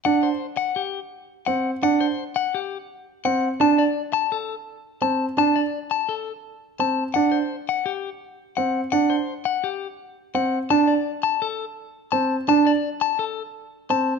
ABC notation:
X:1
M:5/4
L:1/8
Q:1/4=169
K:Dmix
V:1 name="Clean electric guitar"
f c z f G z3 f z | f c z f G z3 f z | a d z a A z3 a z | a d z a A z3 a z |
f c z f G z3 f z | f c z f G z3 f z | a d z a A z3 a z | a d z a A z3 a z |]
V:2 name="Grand piano"
D z6 z C z | D z6 z C z | D z6 z C z | D z6 z C z |
D z6 z C z | D z6 z C z | D z6 z C z | D z6 z C z |]